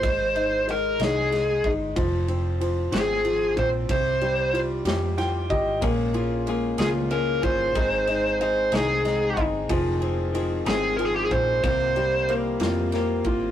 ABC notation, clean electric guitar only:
X:1
M:6/8
L:1/8
Q:3/8=62
K:Fm
V:1 name="Clean electric guitar"
z6 | z6 | z6 | [B,,A,DFA] [DFA] [A,DFA] [B,,A,DFA] [A,DFA] [DFA] |
[A,,E,A,CEA] [A,CEA] [A,CEA] [A,,E,A,CEA] [A,CEA] [A,CEA] | [F,,C,E,A,CA] [E,A,CA] [E,A,CA] [F,,C,E,A,CA] [E,A,CA] [E,A,CA] | [C,F,B,CG] [B,CG] [F,B,CG] [C,F,B,CG] [F,B,CG] [B,CG] |]